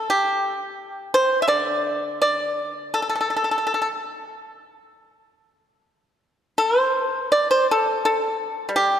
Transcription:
pipa
0.10 G4
1.14 C5
1.42 E5
1.48 D3 D5
2.22 D5
2.94 A4
3.02 A4
3.09 A4
3.15 A4
3.21 A4
3.30 A4
3.36 A4
3.44 A4
3.51 A4
3.58 A4
3.67 A4
3.74 A4
3.82 A4
6.58 A4
6.80 C5
7.32 D5
7.51 C5
7.71 A4
8.05 A4
8.69 G3
8.76 G4

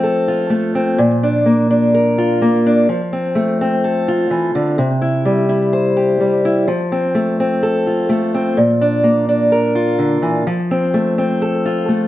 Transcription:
steel-string acoustic guitar
Already playing: F3 A3 C4
0.03 A4
0.28 F4
0.50 A3
0.75 C4
0.98 A#2
1.23 D4
1.46 A#3
1.70 D4
1.94 A#4
2.18 F4
2.42 A#3
2.66 D4
2.89 F3
3.13 C4
3.35 A3
3.61 C4
3.84 A4
4.08 F4
4.31 E3
4.55 D3
4.78 C3
5.02 E4
5.25 G3
5.49 E4
5.73 C5
5.97 G4
6.20 G3
6.45 E4
6.68 F3
6.92 C4
7.15 A3
7.40 C4
7.63 A4
7.87 F4
8.09 A3
8.34 C4
8.57 A#2
8.81 D4
9.04 A#3
9.29 D4
9.52 A#4
9.75 F4
9.99 D3
10.22 E3
10.47 F3
10.71 C4
10.94 A3
11.18 C4
11.42 A4
11.66 F4
11.89 A3

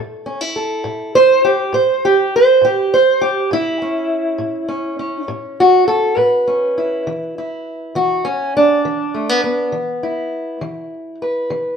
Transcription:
steel-string acoustic guitar
Already playing: A2
0.26 C#4
0.41 E4
0.56 A4
0.84 A2
1.15 C5
1.45 G4
1.73 A2 C5
2.05 G4
2.36 C5
2.61 A2 G4
2.94 C5
3.21 G4
3.51 A2 E4
3.82 C#4
4.38 A2
4.68 C#4
4.99 C#4
5.28 A2
5.60 F#4
5.88 A4
6.17 A2 B4
6.47 C#4
6.78 E4
7.07 E3
7.38 E4
7.95 E3 F#4
8.25 C#4
8.57 D4
8.85 E3
9.14 A3
9.29 B3
9.44 B3
9.72 E3
10.03 E4
10.61 E3
11.22 B4
11.50 E3

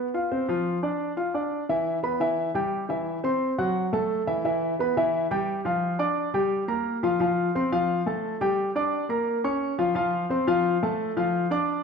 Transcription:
grand piano
0.14 F4 F5
0.32 C4 C5
0.48 F3 F4
0.83 D4 D5
1.17 F4 F5
1.34 D4 D5
1.69 E3 E4 E5
2.03 B3 B4 B5
2.20 E3 E4 E5
2.55 G3 G4 G5
2.89 E3 E4 E5
3.24 C4 C5 C6
3.58 F#3 F#4 F#5
3.93 A3 A4 A5
4.27 E3 E4 E5
4.45 E3 E4 E5
4.79 B3 B4 B5
4.97 E3 E4 E5
5.31 G3 G4 G5
5.65 F3 F4 F5
5.99 D4 D5 D6
6.34 G3 G4 G5
6.68 A#3 A#4 A#5
7.03 F3 F4 F5
7.20 F3 F4 F5
7.55 C4 C5 C6
7.72 F3 F4 F5
8.06 A3 A4 A5
8.41 G3 G4 G5
8.75 D4 D5 D6
9.09 A#3 A#4 A#5
9.44 C#4 C#5 C#6
9.78 F3 F4 F5
9.95 F3 F4 F5
10.30 C4 C5 C6
10.47 F3 F4 F5
10.83 A3 A4 A5
11.17 F3 F4 F5
11.51 D4 D5 D6

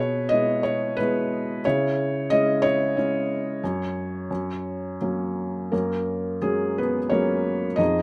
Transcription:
felt piano
Already playing: B2 G#4 B4 C#5
0.29 G#3 B3 E4 D#5
0.63 C#5
0.97 G#3 B3 E4 B4
1.65 C#3 E4 C#5
2.30 G#3 C#4 E4 D#5
2.62 E4 C#5
2.96 G#3 C#4 E4
3.64 F#2
4.31 F#2
5.01 F#3 A#3 C#4
5.72 F#2 A#3 C#4 A#4
6.42 F#3 G#3 C#4 G#4
6.78 B3 B4
7.09 F#3 G#3 A#3 C#4 A#4 C#5
7.76 F2 D#4 G#4 D#5

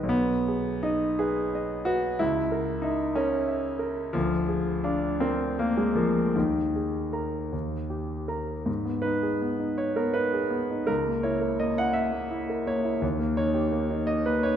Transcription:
grand piano
Already playing: B1 D#3 G#4 B4 D#5
0.03 B1
0.09 B3
0.48 G#4
0.83 D#4 D#5
1.19 G#4 B4
1.55 D#5
1.85 F#4 B4
2.19 C#2 E4
2.52 A#4
2.82 D#4 E5
3.15 C#4 A#4
3.48 E5
3.79 A#4
4.13 D2 F3
4.48 G#4
4.84 D4 F5
5.20 C4 A#4
5.59 A#3 F5
5.77 G#3
5.95 F3 A#4
6.36 D#2 D#3
6.76 G#4
7.13 A#4 A#5
7.52 D#2
7.90 G4
8.28 A#4 A#5
8.66 G#2
8.85 B3
9.02 D#4 B4
9.23 G#4
9.42 B3
9.59 D#4
9.78 C#5
9.96 B3 A#4
10.14 D#4 B4
10.33 G#4
10.50 B3
10.71 D#4
10.87 C#2 A#4
11.07 A#3
11.23 E4 C#5
11.41 A#4
11.60 A#3 D#5
11.78 E4 F#5
11.93 E5
12.13 A#3
12.30 E4
12.49 A#4
12.67 A#3 C#5
12.84 E4
13.02 D#2
13.19 A#3
13.37 D#4 C#5
13.54 G4
13.72 A#3
13.90 D#4
14.07 D#5
14.25 A#3 B4
14.43 D#4 C#5

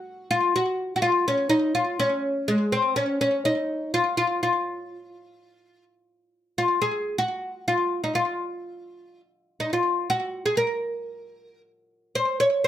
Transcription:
oud
Already playing: F#4
0.31 F4
0.56 F#4
0.96 F#4
1.02 F4
1.28 C#4
1.49 D#4
1.75 F4
2.00 C#4
2.48 G#3
2.72 C4
2.96 C#4
3.21 C#4
3.45 D#4
3.94 F4
4.17 F4
4.43 F4
6.58 F4
6.82 G#4
7.18 F#4
7.68 F4
8.04 D#4
8.15 F4
9.60 D#4
9.73 F4
10.10 F#4
10.46 G#4
10.57 A#4
12.15 C5
12.40 C#5
12.64 C5

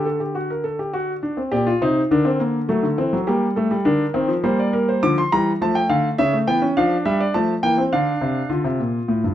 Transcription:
grand piano
Already playing: D3
0.05 A4
0.20 G4
0.35 F#4
0.50 A#4
0.64 A4
0.79 G4
0.93 F#4
1.23 D4
1.37 C4
1.52 A#2 G4 D5
1.67 F4
1.81 C3 D#4 C5
2.11 D3 D4 A#4
2.25 C4
2.40 A#3
2.69 F#3 A3 A4
2.83 D3
2.98 E3 C4
3.13 F#3
3.27 G3 A#3 G4
3.56 A3 A4
3.71 G3
3.85 D3 D4 A#4
4.14 D#3 C4
4.28 F3
4.44 G3 A#3 C5
4.59 D5
4.73 A#4
4.89 C5
5.03 D3 F3 D6
5.18 C6
5.32 E3 G3 A#5
5.61 F3 A3 A5
5.75 G5
5.89 D3 F5
6.18 C#3 C#4 E5
6.33 A3
6.47 E3 B3 G5
6.62 C#4
6.77 F3 D4 F5
7.05 G3 E5
7.20 D5
7.34 F3 A3 A5
7.63 E3 A#3 G5
7.78 C4
7.93 D3 D4 F5
8.21 C3
8.49 D3 F4
8.64 C3
8.79 A#2
9.08 A2
9.24 G2

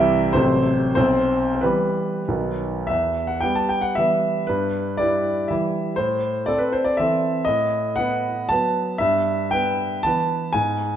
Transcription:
grand piano
Already playing: C2 C3 E3 G3 E4 G4 E5 G5
0.33 A1 C3 F#3 C4 C5
0.37 A3
0.95 B1 C4 C5
1.55 C5
1.61 E3 G3 B3 B4
2.28 B1 D#3 F#3 B3
2.87 E2 E5
3.27 F#5
3.41 G3 B3 G5
3.55 A5
3.69 G5
3.81 F#5
3.95 E3 G3 B3 E5
4.47 G2 B4
4.97 G3 E4 D5
5.48 E3 G3 E4 E5
5.96 A2 C5
6.46 C4 A4 D5
6.58 B4
6.72 C5
6.85 D5
6.97 E3 C4 A4 E5
7.45 A2 D#5
7.96 B3 B4 F#5
8.49 F#3 B3 B4 A5
8.98 G2 E5
9.51 B3 B4 G5
10.03 E3 B3 B4 A5
10.53 G#2 G#5

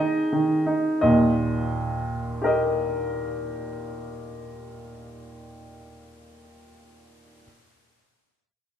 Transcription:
grand piano
Already playing: G#4 D#5
0.00 D#4
0.32 D#3
0.66 D#4
1.01 D#2 A#2 D#5
2.42 G4 A#4
2.46 D#5

